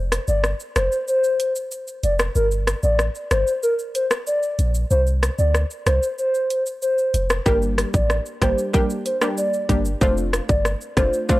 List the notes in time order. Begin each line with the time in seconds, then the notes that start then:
Already playing: F1
0.12 cross-stick, closed hi-hat, shaker
0.28 G1 D5, shaker
0.44 cross-stick, shaker
0.60 shaker
0.76 F1 C5, cross-stick, closed hi-hat, shaker
0.92 shaker
1.08 C5, shaker
1.24 shaker
1.40 closed hi-hat, shaker
1.56 shaker
1.71 shaker
1.88 shaker
2.03 F1 D5, closed hi-hat, shaker
2.19 cross-stick, shaker
2.35 G1 A#4, shaker
2.51 shaker
2.67 cross-stick, closed hi-hat, shaker
2.83 A1 D5, shaker
2.99 cross-stick, shaker
3.15 shaker
3.31 G1 C5, cross-stick, closed hi-hat, shaker
3.47 shaker
3.63 A#4, shaker
3.79 shaker
3.95 C5, closed hi-hat, shaker
4.11 cross-stick, shaker
4.27 D5, shaker
4.43 shaker
4.59 A#1, closed hi-hat, shaker
4.74 shaker
4.90 C2 C5, shaker
5.07 shaker
5.23 cross-stick, closed hi-hat, shaker
5.38 D2 D5, shaker
5.54 cross-stick, shaker
5.71 shaker
5.86 C2 C5, cross-stick, closed hi-hat, shaker
6.03 shaker
6.18 C5, shaker
6.34 shaker
6.50 closed hi-hat, shaker
6.66 shaker
6.82 C5, shaker
6.98 shaker
7.14 F1, closed hi-hat, shaker
7.30 cross-stick, shaker
7.46 G1 G3 A#3 D4 G4 A#4, kick, shaker
7.62 shaker
7.78 cross-stick, closed hi-hat, shaker
7.94 A1 D5, kick, shaker
8.10 cross-stick, shaker
8.26 shaker
8.41 G1 G3 A#3 D4 G4 C5, kick, cross-stick, closed hi-hat, shaker
8.58 shaker
8.73 G3 A#3 D4 G4 A#4, kick, shaker
8.90 shaker
9.05 C5, closed hi-hat, shaker
9.21 G3 A#3 D4 G4, cross-stick, shaker
9.37 D5, shaker
9.54 shaker
9.69 G1 G3 A#3 D4 G4, kick, closed hi-hat, shaker
9.85 shaker
10.01 F1 A3 C4 D4 F4 C5, kick, shaker
10.17 shaker
10.33 cross-stick, closed hi-hat, shaker
10.49 G1 D5, kick, shaker
10.65 cross-stick, shaker
10.81 shaker
10.97 F1 A3 C4 D4 F4 C5, kick, cross-stick, closed hi-hat, shaker
11.13 shaker
11.29 A3 C4 D4 F4 C5, kick, shaker